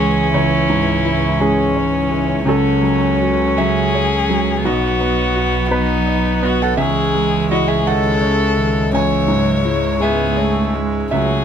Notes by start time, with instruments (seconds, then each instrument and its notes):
Already playing: felt piano C#2 E3 E4 C#5 E5 F#5, double bass C#2, harmonium E3 E4 C#5, cello E3, viola C#4, violin G#4
0.00 felt piano G#3
0.33 felt piano C#2 C#5, violin E4
0.69 felt piano G#2
1.05 felt piano E4
1.40 felt piano G#3 G#4, violin C#4
1.76 felt piano C#5
2.11 felt piano G#3
2.45 felt piano C#2 A4, double bass C#2, harmonium F#3 F#4 C#5, cello F#3, violin C#4, viola C#4
2.83 felt piano F#3
3.21 felt piano F#4
3.58 felt piano F#3 E5, violin G#4
3.95 felt piano C#5
4.29 felt piano F#3
4.64 felt piano B1 D#5, double bass B1, viola B3, violin F#4, harmonium B4
5.00 felt piano B3
5.36 felt piano F#4
5.71 felt piano B3 B4, violin D#4
6.06 felt piano D#5
6.42 felt piano B3 D#5, violin F#4
6.62 violin A4, felt piano F#5
6.77 felt piano C#2 E5, double bass C#2, cello E3, viola G#3, violin G#4, harmonium C#5 E5
7.14 felt piano G#3
7.51 felt piano E4 D#5, violin F#4
7.68 violin G#4, felt piano E5
7.86 cello D#3, viola G#3, violin A4, felt piano F#5
8.22 cello C#3, felt piano C#5
8.57 cello D#3
8.93 felt piano C#2 G#5, cello E3, viola G#3, violin C#5
9.28 felt piano G#2, cello F#3
9.65 cello G#3, felt piano E4
10.00 felt piano G#3 E5, viola B3, violin G#4
10.37 viola A3, felt piano C#5
10.75 felt piano G#3, viola G#3
11.11 felt piano C#2 E5, double bass C#2, harmonium F#3 F#4 C#5, viola F#3, cello A3, violin G#4